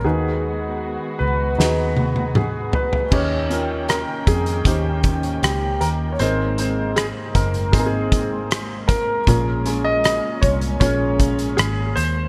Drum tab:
CC |----------------|x---------------|----------------|----------------|
HH |----------------|--x-x-xxx-xxx-x-|x-x-x-xxx-x-x-x-|x-x-x-xxx-xxx-x-|
SD |--------o-------|----r-------r---|----r-------r---|----r-------r---|
T1 |----------oo----|----------------|----------------|----------------|
T2 |------------o---|----------------|----------------|----------------|
FT |--------------oo|----------------|----------------|----------------|
BD |----------------|o-----o-o-o-----|------o-o-o---o-|o-----o-o-o-----|